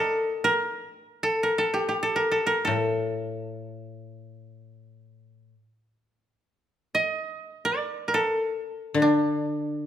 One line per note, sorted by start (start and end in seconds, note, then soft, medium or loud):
0.00 0.50 A4 medium
0.00 0.44 A#4 medium
0.00 1.48 D5 medium
0.00 1.37 D#5 soft
0.00 1.12 G5 soft
0.44 1.29 A#4 loud
1.23 1.49 A4 medium
1.43 1.64 A#4 medium
1.58 2.02 A4 medium
1.74 1.88 G4 medium
1.89 3.93 G4 medium
2.03 2.22 A4 medium
2.16 2.38 A#4 medium
2.31 2.53 A4 medium
2.47 2.71 A#4 medium
2.65 5.52 A2 medium
2.65 5.73 A4 medium
6.95 7.71 D#5 loud
7.65 9.25 D5 medium
8.08 8.20 A#4 medium
8.14 9.86 A4 medium
8.94 9.86 D3 medium
9.02 9.86 D4 medium